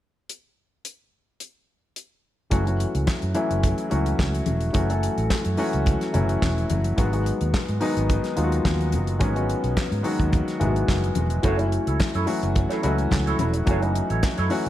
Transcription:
0.29 closed hi-hat
0.85 closed hi-hat
1.40 closed hi-hat
1.96 closed hi-hat
2.50 F#1 E3 F#3 A3 C#4 F#4, kick, closed hi-hat, muted conga
2.66 E3 F#3 A3 C#4 F#4, closed hi-hat
2.80 closed hi-hat
2.95 C#2, closed hi-hat
3.07 kick, snare, clap, high conga
3.22 F#2, closed hi-hat
3.34 E3 F#3 A3 C#4 E4, closed hi-hat, muted conga
3.51 F#1, closed hi-hat
3.63 kick, closed hi-hat, muted conga
3.78 closed hi-hat
3.90 C#2 E3 F#3 A3 C#4 F#4, closed hi-hat
4.06 closed hi-hat
4.19 C#2, kick, snare, clap, high conga
4.35 closed hi-hat
4.46 E1, closed hi-hat, high conga
4.61 closed hi-hat
4.73 F#1 E3 F#3 A3 C#4 F#4, kick, closed hi-hat, muted conga
4.89 E3 F#3 A3 C#4 A4, closed hi-hat
5.03 closed hi-hat
5.18 A1, closed hi-hat
5.30 kick, snare, clap, high conga
5.45 F#2, closed hi-hat
5.57 E3 F#3 A3 C#4 F#4, open hi-hat, muted conga
5.73 C#2, closed hi-hat
5.86 kick, closed hi-hat, muted conga
6.01 snare, closed hi-hat
6.13 F#1 E3 F#3 A3 C#4 E4, closed hi-hat, low conga
6.29 closed hi-hat
6.42 E1, kick, snare, clap, high conga
6.58 closed hi-hat
6.70 F#1, closed hi-hat, high conga
6.84 closed hi-hat
6.96 G#1 D#3 F#3 G#3 B3 F#4, kick, closed hi-hat, muted conga
7.12 D#3 F#3 G#3 B3 F#4, closed hi-hat
7.26 closed hi-hat
7.41 D#2, closed hi-hat
7.54 kick, snare, clap, high conga
7.68 G#2, closed hi-hat
7.80 D#3 F#3 G#3 B3 D#4, open hi-hat, muted conga
7.97 G#1, closed hi-hat
8.10 kick, closed hi-hat, muted conga
8.24 snare, closed hi-hat
8.36 D#2 D#3 F#3 G#3 B3 F4, closed hi-hat
8.44 F#4
8.52 closed hi-hat
8.65 D#2, kick, snare, clap, high conga
8.81 closed hi-hat
8.92 F#1, closed hi-hat, high conga
9.07 closed hi-hat
9.19 G#1 D#3 F#3 G#3 B3 C#4, kick, closed hi-hat, muted conga
9.34 D#3 F#3 G#3 B3 F#4, closed hi-hat
9.50 closed hi-hat
9.64 B1, closed hi-hat
9.77 kick, snare, clap, high conga
9.92 G#2, closed hi-hat
10.03 D#3 F#3 G#3 B3 F#4, open hi-hat, muted conga
10.20 D#2, kick, closed hi-hat
10.33 kick, closed hi-hat, muted conga
10.48 snare, closed hi-hat
10.59 G#1 D#3 F#3 G#3 B3 E4, closed hi-hat, low conga
10.67 F#4
10.76 closed hi-hat
10.88 F#1, kick, snare, clap, high conga
11.04 closed hi-hat
11.15 E1, closed hi-hat, high conga
11.30 closed hi-hat
11.43 F#1 E3 F#3 A3 C#4 E4 F#4 A4 C#5, kick, closed hi-hat, muted conga
11.57 E3 F#3 A3 C#4 E4, muted clean electric guitar stroke, closed hi-hat
11.72 muted clean electric guitar stroke, closed hi-hat
11.87 C#2 E4 A4 C#5, closed hi-hat
12.00 muted clean electric guitar stroke, kick, snare, clap, high conga
12.14 F#2 E4 A4 C#5, closed hi-hat
12.26 E3 F#3 A3 C#4 F#4, open hi-hat, muted conga
12.43 F#1, muted clean electric guitar stroke, closed hi-hat
12.55 muted clean electric guitar stroke, kick, closed hi-hat, muted conga
12.69 E4 A4 C#5, snare, closed hi-hat
12.82 C#2 E3 F#3 A3 C#4 E4 F#4 A4 D#5, closed hi-hat
12.98 muted clean electric guitar stroke, closed hi-hat
13.11 C#2, kick, snare, clap, high conga
13.26 E4 A4 C#5, closed hi-hat
13.39 E1 E4 A4 C#5, closed hi-hat, high conga
13.54 muted clean electric guitar stroke, closed hi-hat
13.66 F#1 E3 F#3 A3 C#4 E4 F#4 A4, kick, closed hi-hat, muted conga
13.70 C#5
13.81 E3 F#3 A3 C#4 D#4, muted clean electric guitar stroke, closed hi-hat
13.95 muted clean electric guitar stroke, closed hi-hat
14.10 A1 E4 A4 C#5, closed hi-hat
14.23 kick, snare, clap, high conga
14.38 F#2 E4 A4 C#5, closed hi-hat
14.50 E3 F#3 A3 C#4 F#4, muted clean electric guitar stroke, open hi-hat

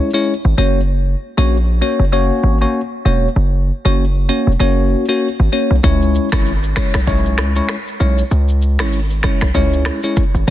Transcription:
0.14 G#3 C#4 E4 C#5
0.45 G#1
0.58 F#1 A#3 C#4 F#4 C#5
1.37 A#1 A#3 C#4 F#4 C#5
1.81 A#3 C#4 F#4 C#5
1.99 F#1
2.12 A#3 C#4 F#4 C#5
2.43 G#1
2.61 A#3 C#4 F#4 C#5
3.05 E1 A#3 C#4 F#4 C#5
3.36 F#1
3.85 F#1 A#3 C#4 F#4 C#5
4.29 A#3 C#4 F#4 C#5
4.47 E1
4.60 F#1 A#3 C#4 F#4 C#5
5.08 A#3 C#4 F#4 C#5
5.40 G#1
5.52 A#3 C#4 F#4 C#5
5.71 B1
5.83 C#2 G#3 C#4 E4 C#5, kick, shaker
6.02 shaker
6.15 shaker
6.32 G#1 G#3 C#4 E4 C#5, finger snap, kick, cross-stick, shaker
6.45 shaker
6.64 shaker
6.76 G#3 C#4 E4 C#5, finger snap, kick, cross-stick, shaker
6.94 B1, finger snap, cross-stick, shaker
7.07 G#3 C#4 E4 C#5, kick, shaker
7.26 shaker
7.38 C#2, finger snap, cross-stick, shaker
7.56 G#3 C#4 E4 C#5, shaker
7.69 finger snap, cross-stick, shaker
7.88 shaker
8.00 B1 G#3 C#4 E4 C#5, shaker
8.18 shaker
8.31 C#2, shaker
8.49 shaker
8.62 shaker
8.79 G#1 G#3 C#4 E4 C#5, finger snap, cross-stick, shaker
8.93 shaker
9.11 shaker
9.23 G#3 C#4 E4 C#5, finger snap, kick, cross-stick, shaker
9.41 B1, finger snap, cross-stick, shaker
9.55 C#2 G#3 C#4 E4 C#5, kick, shaker
9.73 shaker
9.85 finger snap, cross-stick, shaker
10.03 G#3 C#4 E4 C#5, shaker
10.16 kick, shaker
10.35 G#1, shaker

